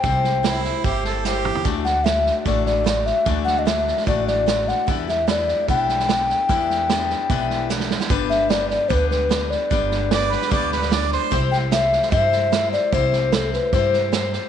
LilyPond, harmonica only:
\new Staff \with { instrumentName = "Harmonica" } { \time 4/4 \key g \major \tempo 4 = 149 r4 e'4 g'8 a'8 g'4 | r1 | r1 | r1 |
r1 | r1 | r4 d''8 b'8 d''8 b'8 d''8 c''8~ | c''16 r2. r8. |
r1 | }